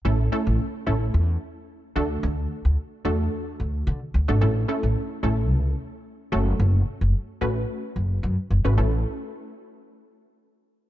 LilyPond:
<<
  \new Staff \with { instrumentName = "Synth pluck" } { \time 4/4 \key a \major \tempo 4 = 110 <a cis' e' a'>16 r16 <a cis' e' a'>8. r16 <a cis' e' a'>4. r8 <a d' fis' a'>8~ | <a d' fis' a'>4 r8 <a d' fis' a'>4. r8. <a d' fis' a'>16 | <a cis' e' a'>16 r16 <a cis' e' a'>8. r16 <a cis' e' a'>4. r8 <a cis' fis' a'>8~ | <a cis' fis' a'>4 r8 <a cis' fis' b'>4. r8. <a cis' fis' b'>16 |
<a cis' e' a'>8 r2. r8 | }
  \new Staff \with { instrumentName = "Upright bass" } { \clef bass \time 4/4 \key a \major a,,8 r16 a,,16 r8 a,,8 e,8 r4 d,8 | d,8 r16 d,16 r8 e,8 r8 d,8 d16 r16 d,16 gis,,16 | a,,8 r16 a,,16 r8 a,,8 cis,8 r4 fis,,8 | fis,,8 r16 fis,,16 r8 a,,8 r8 fis,,8 fis,16 r16 fis,,16 gis,,16 |
a,,8 r2. r8 | }
>>